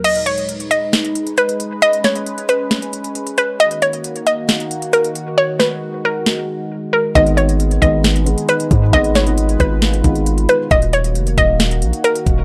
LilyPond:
<<
  \new Staff \with { instrumentName = "Synth pluck" } { \time 4/4 \key gis \dorian \tempo 4 = 135 dis''8 cis''4 dis''4. b'8 r8 | dis''8 cis''4 b'2 b'8 | dis''8 cis''4 dis''4. ais'8 r8 | cis''8 b'4 ais'2 ais'8 |
dis''8 cis''4 dis''4. b'8 r8 | dis''8 cis''4 b'2 b'8 | dis''8 cis''4 dis''4. ais'8 r8 | }
  \new Staff \with { instrumentName = "Analog synth pad" } { \time 4/4 \key gis \dorian << { <gis b'>1~ | <gis b'>1 | <dis fis'>1~ | <dis fis'>1 |
<gis b'>1~ | <gis b'>1 | <dis fis'>1 | } \\ { dis'1 | cis'1 | ais1 | gis1 |
dis'1 | eis'1 | ais1 | } >> }
  \new Staff \with { instrumentName = "Felt piano" } { \time 4/4 \key gis \dorian r1 | r1 | r1 | r1 |
<dis gis b gis'>4~ <dis gis b gis'>16 r16 <dis gis b gis'>8. r16 <dis gis b gis'>4~ <dis gis b gis'>16 r16 | <dis gis b gis'>8 r16 <dis gis b gis'>4. r16 <dis gis b gis'>4~ <dis gis b gis'>16 r16 | r1 | }
  \new Staff \with { instrumentName = "808-style bass" } { \clef bass \time 4/4 \key gis \dorian r1 | r1 | r1 | r1 |
gis,,4. gis,,4~ gis,,16 r8. gis,8 | gis,,4. gis,,4 gis,,4 r8 | dis,,4 eis,,8 dis,,4 ais,,16 r8. dis,,8 | }
  \new DrumStaff \with { instrumentName = "Drums" } \drummode { \time 4/4 <cymc hh>16 hh16 hh16 hh16 hh16 hh16 hh8 <hh sn>16 hh16 hh16 hh16 hh16 hh16 hh8 | hh16 hh16 <hh sn>16 hh16 hh16 hh16 hh8 <hh sn>16 hh16 hh16 hh16 hh16 hh16 hh8 | hh16 hh16 hh16 hh16 hh16 hh16 hh8 <hh sn>16 hh16 hh16 hh16 hh16 hh16 hh8 | r8 sn8 r4 sn4 r4 |
<hh bd>16 hh16 hh16 hh16 hh16 hh16 <hh bd>8 <hh sn>16 hh16 hh16 hh16 hh16 hh16 <hh bd>8 | <hh bd>16 hh16 <hh sn>16 hh16 hh16 hh16 <hh bd>8 <hh sn>16 hh16 <hh bd>16 hh16 hh16 hh16 hh8 | <hh bd>16 hh16 hh16 hh16 hh16 hh16 <hh bd>8 <hh sn>16 hh16 hh16 hh16 hh16 hh16 <hh bd>8 | }
>>